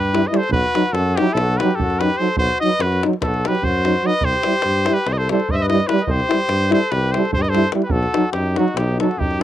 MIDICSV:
0, 0, Header, 1, 7, 480
1, 0, Start_track
1, 0, Tempo, 412939
1, 574, Time_signature, 9, 3, 24, 8
1, 10963, End_track
2, 0, Start_track
2, 0, Title_t, "Trumpet"
2, 0, Program_c, 0, 56
2, 0, Note_on_c, 0, 71, 89
2, 318, Note_on_c, 0, 75, 55
2, 335, Note_off_c, 0, 71, 0
2, 420, Note_on_c, 0, 72, 83
2, 438, Note_off_c, 0, 75, 0
2, 600, Note_off_c, 0, 72, 0
2, 607, Note_on_c, 0, 71, 99
2, 1077, Note_on_c, 0, 69, 86
2, 1094, Note_off_c, 0, 71, 0
2, 1345, Note_on_c, 0, 67, 91
2, 1363, Note_off_c, 0, 69, 0
2, 1544, Note_on_c, 0, 69, 101
2, 1561, Note_off_c, 0, 67, 0
2, 1830, Note_on_c, 0, 71, 80
2, 1847, Note_off_c, 0, 69, 0
2, 2036, Note_on_c, 0, 69, 83
2, 2053, Note_off_c, 0, 71, 0
2, 2316, Note_on_c, 0, 71, 94
2, 2333, Note_off_c, 0, 69, 0
2, 2527, Note_on_c, 0, 72, 89
2, 2545, Note_off_c, 0, 71, 0
2, 2744, Note_off_c, 0, 72, 0
2, 2767, Note_on_c, 0, 72, 105
2, 3009, Note_off_c, 0, 72, 0
2, 3023, Note_on_c, 0, 75, 108
2, 3274, Note_on_c, 0, 71, 94
2, 3291, Note_off_c, 0, 75, 0
2, 3528, Note_off_c, 0, 71, 0
2, 3747, Note_on_c, 0, 69, 81
2, 4039, Note_on_c, 0, 71, 82
2, 4057, Note_off_c, 0, 69, 0
2, 4234, Note_on_c, 0, 72, 91
2, 4252, Note_off_c, 0, 71, 0
2, 4721, Note_on_c, 0, 75, 95
2, 4738, Note_off_c, 0, 72, 0
2, 4939, Note_on_c, 0, 72, 112
2, 4957, Note_off_c, 0, 75, 0
2, 5738, Note_on_c, 0, 71, 91
2, 5756, Note_off_c, 0, 72, 0
2, 5918, Note_on_c, 0, 72, 87
2, 5936, Note_off_c, 0, 71, 0
2, 5962, Note_on_c, 0, 75, 76
2, 5979, Note_off_c, 0, 72, 0
2, 6022, Note_on_c, 0, 72, 81
2, 6040, Note_off_c, 0, 75, 0
2, 6163, Note_off_c, 0, 72, 0
2, 6184, Note_on_c, 0, 72, 74
2, 6404, Note_on_c, 0, 75, 99
2, 6421, Note_off_c, 0, 72, 0
2, 6435, Note_on_c, 0, 76, 81
2, 6452, Note_off_c, 0, 75, 0
2, 6523, Note_on_c, 0, 75, 92
2, 6540, Note_off_c, 0, 76, 0
2, 6601, Note_off_c, 0, 75, 0
2, 6608, Note_on_c, 0, 75, 89
2, 6827, Note_on_c, 0, 71, 95
2, 6844, Note_off_c, 0, 75, 0
2, 6983, Note_on_c, 0, 75, 64
2, 7000, Note_off_c, 0, 71, 0
2, 7085, Note_on_c, 0, 72, 117
2, 7103, Note_off_c, 0, 75, 0
2, 7814, Note_off_c, 0, 72, 0
2, 7821, Note_on_c, 0, 72, 96
2, 8031, Note_on_c, 0, 71, 85
2, 8048, Note_off_c, 0, 72, 0
2, 8273, Note_on_c, 0, 72, 72
2, 8291, Note_off_c, 0, 71, 0
2, 8515, Note_off_c, 0, 72, 0
2, 8522, Note_on_c, 0, 72, 93
2, 8623, Note_on_c, 0, 75, 84
2, 8640, Note_off_c, 0, 72, 0
2, 8708, Note_on_c, 0, 72, 93
2, 8726, Note_off_c, 0, 75, 0
2, 8945, Note_off_c, 0, 72, 0
2, 9109, Note_on_c, 0, 71, 62
2, 9200, Note_on_c, 0, 69, 107
2, 9218, Note_off_c, 0, 71, 0
2, 9663, Note_off_c, 0, 69, 0
2, 9670, Note_on_c, 0, 67, 82
2, 9969, Note_on_c, 0, 66, 77
2, 9986, Note_off_c, 0, 67, 0
2, 10188, Note_on_c, 0, 67, 72
2, 10205, Note_off_c, 0, 66, 0
2, 10453, Note_off_c, 0, 67, 0
2, 10460, Note_on_c, 0, 69, 73
2, 10678, Note_on_c, 0, 67, 92
2, 10695, Note_off_c, 0, 69, 0
2, 10955, Note_off_c, 0, 67, 0
2, 10963, End_track
3, 0, Start_track
3, 0, Title_t, "Flugelhorn"
3, 0, Program_c, 1, 56
3, 0, Note_on_c, 1, 67, 78
3, 311, Note_on_c, 1, 71, 44
3, 329, Note_off_c, 1, 67, 0
3, 393, Note_on_c, 1, 69, 68
3, 410, Note_off_c, 1, 71, 0
3, 592, Note_off_c, 1, 69, 0
3, 619, Note_on_c, 1, 66, 81
3, 1117, Note_off_c, 1, 66, 0
3, 1117, Note_on_c, 1, 66, 81
3, 1426, Note_on_c, 1, 64, 79
3, 1444, Note_off_c, 1, 66, 0
3, 1633, Note_on_c, 1, 66, 85
3, 1650, Note_off_c, 1, 64, 0
3, 1887, Note_on_c, 1, 67, 76
3, 1905, Note_off_c, 1, 66, 0
3, 2117, Note_on_c, 1, 66, 79
3, 2134, Note_off_c, 1, 67, 0
3, 2360, Note_on_c, 1, 67, 73
3, 2378, Note_off_c, 1, 66, 0
3, 2571, Note_on_c, 1, 69, 64
3, 2588, Note_off_c, 1, 67, 0
3, 2766, Note_off_c, 1, 69, 0
3, 2787, Note_on_c, 1, 66, 75
3, 3020, Note_off_c, 1, 66, 0
3, 3103, Note_on_c, 1, 71, 68
3, 3295, Note_on_c, 1, 66, 80
3, 3313, Note_off_c, 1, 71, 0
3, 3539, Note_off_c, 1, 66, 0
3, 3794, Note_on_c, 1, 66, 67
3, 4031, Note_on_c, 1, 67, 74
3, 4049, Note_off_c, 1, 66, 0
3, 4256, Note_on_c, 1, 66, 85
3, 4274, Note_off_c, 1, 67, 0
3, 4727, Note_on_c, 1, 71, 73
3, 4745, Note_off_c, 1, 66, 0
3, 4934, Note_on_c, 1, 67, 92
3, 4951, Note_off_c, 1, 71, 0
3, 5689, Note_off_c, 1, 67, 0
3, 5689, Note_on_c, 1, 67, 80
3, 5888, Note_off_c, 1, 67, 0
3, 5888, Note_on_c, 1, 67, 66
3, 5945, Note_on_c, 1, 71, 61
3, 5963, Note_off_c, 1, 67, 0
3, 6009, Note_on_c, 1, 69, 76
3, 6026, Note_off_c, 1, 71, 0
3, 6156, Note_off_c, 1, 69, 0
3, 6172, Note_on_c, 1, 69, 78
3, 6409, Note_on_c, 1, 72, 78
3, 6427, Note_off_c, 1, 69, 0
3, 6472, Note_off_c, 1, 72, 0
3, 6472, Note_on_c, 1, 72, 69
3, 6533, Note_on_c, 1, 71, 80
3, 6551, Note_off_c, 1, 72, 0
3, 6648, Note_off_c, 1, 71, 0
3, 6665, Note_on_c, 1, 71, 65
3, 6880, Note_on_c, 1, 67, 68
3, 6897, Note_off_c, 1, 71, 0
3, 7017, Note_on_c, 1, 71, 63
3, 7034, Note_off_c, 1, 67, 0
3, 7095, Note_on_c, 1, 67, 86
3, 7113, Note_off_c, 1, 71, 0
3, 7838, Note_off_c, 1, 67, 0
3, 7845, Note_on_c, 1, 69, 76
3, 8050, Note_on_c, 1, 67, 78
3, 8068, Note_off_c, 1, 69, 0
3, 8354, Note_on_c, 1, 69, 77
3, 8371, Note_off_c, 1, 67, 0
3, 8560, Note_off_c, 1, 69, 0
3, 8573, Note_on_c, 1, 67, 83
3, 8625, Note_on_c, 1, 71, 56
3, 8642, Note_off_c, 1, 67, 0
3, 8701, Note_on_c, 1, 69, 76
3, 8718, Note_off_c, 1, 71, 0
3, 8941, Note_off_c, 1, 69, 0
3, 9140, Note_on_c, 1, 67, 63
3, 9199, Note_on_c, 1, 66, 77
3, 9216, Note_off_c, 1, 67, 0
3, 9702, Note_off_c, 1, 66, 0
3, 9717, Note_on_c, 1, 63, 61
3, 9985, Note_off_c, 1, 63, 0
3, 9985, Note_on_c, 1, 63, 65
3, 10212, Note_off_c, 1, 63, 0
3, 10212, Note_on_c, 1, 63, 71
3, 10467, Note_off_c, 1, 63, 0
3, 10474, Note_on_c, 1, 66, 66
3, 10697, Note_on_c, 1, 63, 75
3, 10715, Note_off_c, 1, 66, 0
3, 10963, Note_off_c, 1, 63, 0
3, 10963, End_track
4, 0, Start_track
4, 0, Title_t, "French horn"
4, 0, Program_c, 2, 60
4, 165, Note_on_c, 2, 64, 72
4, 247, Note_off_c, 2, 64, 0
4, 355, Note_on_c, 2, 64, 62
4, 442, Note_off_c, 2, 64, 0
4, 869, Note_on_c, 2, 63, 65
4, 954, Note_off_c, 2, 63, 0
4, 1377, Note_on_c, 2, 63, 67
4, 1460, Note_off_c, 2, 63, 0
4, 1875, Note_on_c, 2, 63, 61
4, 1957, Note_off_c, 2, 63, 0
4, 2346, Note_on_c, 2, 63, 66
4, 2426, Note_off_c, 2, 63, 0
4, 2561, Note_on_c, 2, 63, 48
4, 2641, Note_off_c, 2, 63, 0
4, 3038, Note_on_c, 2, 63, 65
4, 3123, Note_off_c, 2, 63, 0
4, 3536, Note_on_c, 2, 63, 72
4, 3620, Note_off_c, 2, 63, 0
4, 4019, Note_on_c, 2, 63, 49
4, 4106, Note_off_c, 2, 63, 0
4, 4487, Note_on_c, 2, 63, 60
4, 4571, Note_off_c, 2, 63, 0
4, 4711, Note_on_c, 2, 63, 47
4, 4794, Note_off_c, 2, 63, 0
4, 5182, Note_on_c, 2, 64, 55
4, 5271, Note_off_c, 2, 64, 0
4, 5647, Note_on_c, 2, 64, 65
4, 5741, Note_off_c, 2, 64, 0
4, 6172, Note_on_c, 2, 64, 49
4, 6260, Note_off_c, 2, 64, 0
4, 6616, Note_on_c, 2, 64, 68
4, 6707, Note_off_c, 2, 64, 0
4, 6838, Note_on_c, 2, 64, 63
4, 6928, Note_off_c, 2, 64, 0
4, 7310, Note_on_c, 2, 64, 66
4, 7404, Note_off_c, 2, 64, 0
4, 7798, Note_on_c, 2, 64, 79
4, 7894, Note_off_c, 2, 64, 0
4, 8303, Note_on_c, 2, 64, 59
4, 8396, Note_off_c, 2, 64, 0
4, 8782, Note_on_c, 2, 64, 68
4, 8870, Note_off_c, 2, 64, 0
4, 9001, Note_on_c, 2, 64, 56
4, 9088, Note_off_c, 2, 64, 0
4, 9469, Note_on_c, 2, 63, 71
4, 9563, Note_off_c, 2, 63, 0
4, 9956, Note_on_c, 2, 63, 68
4, 10050, Note_off_c, 2, 63, 0
4, 10441, Note_on_c, 2, 63, 65
4, 10536, Note_off_c, 2, 63, 0
4, 10924, Note_on_c, 2, 63, 59
4, 10963, Note_off_c, 2, 63, 0
4, 10963, End_track
5, 0, Start_track
5, 0, Title_t, "Euphonium"
5, 0, Program_c, 3, 58
5, 170, Note_on_c, 3, 55, 61
5, 251, Note_off_c, 3, 55, 0
5, 380, Note_on_c, 3, 55, 75
5, 462, Note_off_c, 3, 55, 0
5, 882, Note_on_c, 3, 54, 61
5, 965, Note_off_c, 3, 54, 0
5, 1398, Note_on_c, 3, 54, 77
5, 1477, Note_off_c, 3, 54, 0
5, 1901, Note_on_c, 3, 54, 73
5, 1978, Note_off_c, 3, 54, 0
5, 2346, Note_on_c, 3, 54, 49
5, 2426, Note_off_c, 3, 54, 0
5, 2565, Note_on_c, 3, 54, 64
5, 2644, Note_off_c, 3, 54, 0
5, 3066, Note_on_c, 3, 54, 59
5, 3145, Note_off_c, 3, 54, 0
5, 3569, Note_on_c, 3, 54, 52
5, 3647, Note_off_c, 3, 54, 0
5, 4056, Note_on_c, 3, 54, 52
5, 4135, Note_off_c, 3, 54, 0
5, 4488, Note_on_c, 3, 54, 46
5, 4572, Note_off_c, 3, 54, 0
5, 4695, Note_on_c, 3, 54, 58
5, 4781, Note_off_c, 3, 54, 0
5, 5188, Note_on_c, 3, 55, 48
5, 5276, Note_off_c, 3, 55, 0
5, 5691, Note_on_c, 3, 55, 52
5, 5777, Note_off_c, 3, 55, 0
5, 6181, Note_on_c, 3, 55, 66
5, 6268, Note_off_c, 3, 55, 0
5, 6658, Note_on_c, 3, 55, 63
5, 6740, Note_off_c, 3, 55, 0
5, 6885, Note_on_c, 3, 55, 71
5, 6965, Note_off_c, 3, 55, 0
5, 7360, Note_on_c, 3, 55, 48
5, 7445, Note_off_c, 3, 55, 0
5, 7810, Note_on_c, 3, 55, 68
5, 7903, Note_off_c, 3, 55, 0
5, 8327, Note_on_c, 3, 55, 70
5, 8415, Note_off_c, 3, 55, 0
5, 8773, Note_on_c, 3, 55, 69
5, 8863, Note_off_c, 3, 55, 0
5, 9004, Note_on_c, 3, 55, 69
5, 9091, Note_off_c, 3, 55, 0
5, 9486, Note_on_c, 3, 54, 58
5, 9576, Note_off_c, 3, 54, 0
5, 9981, Note_on_c, 3, 54, 69
5, 10070, Note_off_c, 3, 54, 0
5, 10480, Note_on_c, 3, 54, 65
5, 10567, Note_off_c, 3, 54, 0
5, 10913, Note_on_c, 3, 54, 49
5, 10963, Note_off_c, 3, 54, 0
5, 10963, End_track
6, 0, Start_track
6, 0, Title_t, "Tuba"
6, 0, Program_c, 4, 58
6, 0, Note_on_c, 4, 43, 75
6, 282, Note_off_c, 4, 43, 0
6, 579, Note_on_c, 4, 35, 101
6, 727, Note_off_c, 4, 35, 0
6, 1078, Note_on_c, 4, 42, 102
6, 1348, Note_off_c, 4, 42, 0
6, 1567, Note_on_c, 4, 35, 110
6, 1840, Note_off_c, 4, 35, 0
6, 2058, Note_on_c, 4, 42, 75
6, 2435, Note_off_c, 4, 42, 0
6, 2746, Note_on_c, 4, 35, 96
6, 2895, Note_off_c, 4, 35, 0
6, 3245, Note_on_c, 4, 42, 92
6, 3516, Note_off_c, 4, 42, 0
6, 3730, Note_on_c, 4, 35, 86
6, 4003, Note_off_c, 4, 35, 0
6, 4216, Note_on_c, 4, 42, 82
6, 4594, Note_off_c, 4, 42, 0
6, 4904, Note_on_c, 4, 36, 83
6, 5055, Note_off_c, 4, 36, 0
6, 5407, Note_on_c, 4, 43, 79
6, 5677, Note_off_c, 4, 43, 0
6, 5886, Note_on_c, 4, 36, 84
6, 6160, Note_off_c, 4, 36, 0
6, 6386, Note_on_c, 4, 43, 84
6, 6761, Note_off_c, 4, 43, 0
6, 7063, Note_on_c, 4, 36, 100
6, 7214, Note_off_c, 4, 36, 0
6, 7544, Note_on_c, 4, 43, 89
6, 7820, Note_off_c, 4, 43, 0
6, 8040, Note_on_c, 4, 36, 96
6, 8314, Note_off_c, 4, 36, 0
6, 8518, Note_on_c, 4, 43, 78
6, 8898, Note_off_c, 4, 43, 0
6, 9189, Note_on_c, 4, 35, 108
6, 9346, Note_off_c, 4, 35, 0
6, 9682, Note_on_c, 4, 42, 83
6, 9960, Note_off_c, 4, 42, 0
6, 10172, Note_on_c, 4, 35, 103
6, 10451, Note_off_c, 4, 35, 0
6, 10662, Note_on_c, 4, 42, 66
6, 10963, Note_off_c, 4, 42, 0
6, 10963, End_track
7, 0, Start_track
7, 0, Title_t, "Davul"
7, 58, Note_on_c, 9, 37, 22
7, 168, Note_off_c, 9, 37, 0
7, 168, Note_on_c, 9, 37, 66
7, 285, Note_off_c, 9, 37, 0
7, 290, Note_on_c, 9, 37, 26
7, 393, Note_off_c, 9, 37, 0
7, 393, Note_on_c, 9, 37, 60
7, 504, Note_off_c, 9, 37, 0
7, 504, Note_on_c, 9, 37, 27
7, 610, Note_on_c, 9, 43, 90
7, 620, Note_off_c, 9, 37, 0
7, 726, Note_off_c, 9, 43, 0
7, 747, Note_on_c, 9, 37, 30
7, 864, Note_off_c, 9, 37, 0
7, 872, Note_on_c, 9, 37, 62
7, 989, Note_off_c, 9, 37, 0
7, 995, Note_on_c, 9, 37, 25
7, 1099, Note_off_c, 9, 37, 0
7, 1099, Note_on_c, 9, 37, 58
7, 1216, Note_off_c, 9, 37, 0
7, 1365, Note_on_c, 9, 37, 69
7, 1474, Note_off_c, 9, 37, 0
7, 1474, Note_on_c, 9, 37, 24
7, 1591, Note_off_c, 9, 37, 0
7, 1596, Note_on_c, 9, 37, 71
7, 1712, Note_off_c, 9, 37, 0
7, 1859, Note_on_c, 9, 37, 71
7, 1975, Note_off_c, 9, 37, 0
7, 1983, Note_on_c, 9, 37, 23
7, 2088, Note_on_c, 9, 43, 85
7, 2099, Note_off_c, 9, 37, 0
7, 2204, Note_off_c, 9, 43, 0
7, 2209, Note_on_c, 9, 37, 23
7, 2325, Note_off_c, 9, 37, 0
7, 2332, Note_on_c, 9, 37, 70
7, 2442, Note_off_c, 9, 37, 0
7, 2442, Note_on_c, 9, 37, 25
7, 2558, Note_off_c, 9, 37, 0
7, 2651, Note_on_c, 9, 37, 26
7, 2752, Note_on_c, 9, 43, 89
7, 2767, Note_off_c, 9, 37, 0
7, 2868, Note_off_c, 9, 43, 0
7, 2908, Note_on_c, 9, 37, 32
7, 3025, Note_off_c, 9, 37, 0
7, 3157, Note_on_c, 9, 37, 27
7, 3258, Note_off_c, 9, 37, 0
7, 3258, Note_on_c, 9, 37, 71
7, 3374, Note_off_c, 9, 37, 0
7, 3399, Note_on_c, 9, 37, 27
7, 3515, Note_off_c, 9, 37, 0
7, 3526, Note_on_c, 9, 37, 67
7, 3642, Note_off_c, 9, 37, 0
7, 3642, Note_on_c, 9, 37, 26
7, 3742, Note_off_c, 9, 37, 0
7, 3742, Note_on_c, 9, 37, 72
7, 3742, Note_on_c, 9, 43, 68
7, 3859, Note_off_c, 9, 37, 0
7, 3859, Note_off_c, 9, 43, 0
7, 3883, Note_on_c, 9, 37, 28
7, 3999, Note_off_c, 9, 37, 0
7, 4011, Note_on_c, 9, 37, 73
7, 4126, Note_off_c, 9, 37, 0
7, 4126, Note_on_c, 9, 37, 30
7, 4224, Note_on_c, 9, 43, 73
7, 4242, Note_off_c, 9, 37, 0
7, 4340, Note_off_c, 9, 43, 0
7, 4474, Note_on_c, 9, 37, 58
7, 4591, Note_off_c, 9, 37, 0
7, 4598, Note_on_c, 9, 37, 26
7, 4714, Note_off_c, 9, 37, 0
7, 4807, Note_on_c, 9, 37, 28
7, 4893, Note_on_c, 9, 43, 82
7, 4924, Note_off_c, 9, 37, 0
7, 5010, Note_off_c, 9, 43, 0
7, 5031, Note_on_c, 9, 37, 31
7, 5148, Note_off_c, 9, 37, 0
7, 5154, Note_on_c, 9, 37, 72
7, 5264, Note_off_c, 9, 37, 0
7, 5264, Note_on_c, 9, 37, 26
7, 5371, Note_off_c, 9, 37, 0
7, 5371, Note_on_c, 9, 37, 66
7, 5487, Note_off_c, 9, 37, 0
7, 5646, Note_on_c, 9, 37, 69
7, 5762, Note_off_c, 9, 37, 0
7, 5776, Note_on_c, 9, 37, 27
7, 5887, Note_off_c, 9, 37, 0
7, 5887, Note_on_c, 9, 37, 68
7, 6003, Note_off_c, 9, 37, 0
7, 6152, Note_on_c, 9, 37, 72
7, 6269, Note_off_c, 9, 37, 0
7, 6274, Note_on_c, 9, 37, 26
7, 6378, Note_on_c, 9, 43, 72
7, 6391, Note_off_c, 9, 37, 0
7, 6494, Note_off_c, 9, 43, 0
7, 6508, Note_on_c, 9, 37, 24
7, 6621, Note_off_c, 9, 37, 0
7, 6621, Note_on_c, 9, 37, 57
7, 6738, Note_off_c, 9, 37, 0
7, 6743, Note_on_c, 9, 37, 26
7, 6846, Note_off_c, 9, 37, 0
7, 6846, Note_on_c, 9, 37, 71
7, 6961, Note_off_c, 9, 37, 0
7, 6961, Note_on_c, 9, 37, 29
7, 7059, Note_on_c, 9, 43, 78
7, 7078, Note_off_c, 9, 37, 0
7, 7175, Note_off_c, 9, 43, 0
7, 7205, Note_on_c, 9, 37, 30
7, 7321, Note_off_c, 9, 37, 0
7, 7332, Note_on_c, 9, 37, 73
7, 7441, Note_off_c, 9, 37, 0
7, 7441, Note_on_c, 9, 37, 29
7, 7544, Note_off_c, 9, 37, 0
7, 7544, Note_on_c, 9, 37, 68
7, 7660, Note_off_c, 9, 37, 0
7, 7812, Note_on_c, 9, 37, 62
7, 7929, Note_off_c, 9, 37, 0
7, 7948, Note_on_c, 9, 37, 24
7, 8040, Note_off_c, 9, 37, 0
7, 8040, Note_on_c, 9, 37, 68
7, 8156, Note_off_c, 9, 37, 0
7, 8301, Note_on_c, 9, 37, 67
7, 8418, Note_off_c, 9, 37, 0
7, 8429, Note_on_c, 9, 37, 24
7, 8518, Note_on_c, 9, 43, 87
7, 8545, Note_off_c, 9, 37, 0
7, 8635, Note_off_c, 9, 43, 0
7, 8653, Note_on_c, 9, 37, 29
7, 8769, Note_off_c, 9, 37, 0
7, 8771, Note_on_c, 9, 37, 56
7, 8883, Note_off_c, 9, 37, 0
7, 8883, Note_on_c, 9, 37, 25
7, 8975, Note_off_c, 9, 37, 0
7, 8975, Note_on_c, 9, 37, 72
7, 9088, Note_off_c, 9, 37, 0
7, 9088, Note_on_c, 9, 37, 29
7, 9178, Note_on_c, 9, 43, 91
7, 9204, Note_off_c, 9, 37, 0
7, 9294, Note_off_c, 9, 43, 0
7, 9331, Note_on_c, 9, 37, 28
7, 9447, Note_off_c, 9, 37, 0
7, 9464, Note_on_c, 9, 37, 78
7, 9580, Note_off_c, 9, 37, 0
7, 9684, Note_on_c, 9, 37, 69
7, 9800, Note_off_c, 9, 37, 0
7, 9954, Note_on_c, 9, 37, 64
7, 10070, Note_off_c, 9, 37, 0
7, 10090, Note_on_c, 9, 37, 24
7, 10195, Note_off_c, 9, 37, 0
7, 10195, Note_on_c, 9, 37, 79
7, 10311, Note_off_c, 9, 37, 0
7, 10461, Note_on_c, 9, 37, 68
7, 10577, Note_off_c, 9, 37, 0
7, 10590, Note_on_c, 9, 37, 28
7, 10700, Note_on_c, 9, 43, 77
7, 10706, Note_off_c, 9, 37, 0
7, 10816, Note_off_c, 9, 43, 0
7, 10818, Note_on_c, 9, 37, 25
7, 10934, Note_off_c, 9, 37, 0
7, 10963, End_track
0, 0, End_of_file